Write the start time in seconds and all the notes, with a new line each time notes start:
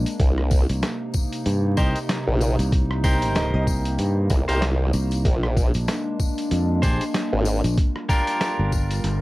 Already playing: G#3 A#3 D4
0.06 closed hi-hat, tambourine
0.19 C2 C3 A#3 D#4, kick, closed hi-hat, tambourine
0.38 cross-stick
0.51 kick, closed hi-hat, tambourine
0.69 C2, closed hi-hat, tambourine
0.82 snare, closed hi-hat, tambourine
1.14 kick, tambourine
1.33 closed hi-hat, tambourine
1.46 G2, closed hi-hat, tambourine
1.77 C2 D#4 G4 A#4 C5 D#5, kick, tambourine
1.96 closed hi-hat, tambourine
2.09 snare, closed hi-hat, tambourine
2.27 A#1
2.41 closed hi-hat, tambourine
2.59 C2, closed hi-hat, tambourine
2.72 kick, closed hi-hat, tambourine
2.91 cross-stick
3.04 D#4 G4 A#4 C5, kick, closed hi-hat, tambourine
3.22 closed hi-hat, tambourine
3.35 D#5, snare, closed hi-hat, tambourine
3.54 C2 D#5
3.67 kick, tambourine
3.85 closed hi-hat, tambourine
3.98 G2, closed hi-hat, tambourine
4.30 C2, kick, cross-stick, closed hi-hat, tambourine
4.48 C2 D#4 G4 A#4 C5, closed hi-hat, tambourine
4.62 snare, closed hi-hat, tambourine
4.93 C2, closed hi-hat, tambourine
5.11 closed hi-hat, tambourine
5.25 A#1 G#3 D4, kick, closed hi-hat, tambourine
5.43 cross-stick
5.57 kick, closed hi-hat, tambourine
5.74 A#1, closed hi-hat, tambourine
5.88 snare, closed hi-hat, tambourine
6.20 kick, tambourine
6.38 closed hi-hat, tambourine
6.51 F2, closed hi-hat, tambourine
6.82 A#1 D4 G4 G#4 C5, kick, closed hi-hat, tambourine
7.01 closed hi-hat, tambourine
7.14 snare, closed hi-hat, tambourine
7.33 G#1
7.45 closed hi-hat, tambourine
7.64 A#1, closed hi-hat, tambourine
7.78 G3 F4 A#4, kick, closed hi-hat, tambourine
7.96 cross-stick
8.09 D4 F4 G4 A#4, kick, closed hi-hat, tambourine
8.27 closed hi-hat, tambourine
8.41 snare, closed hi-hat, tambourine
8.59 G1
8.72 kick, tambourine
8.91 closed hi-hat, tambourine
9.04 G1, closed hi-hat, tambourine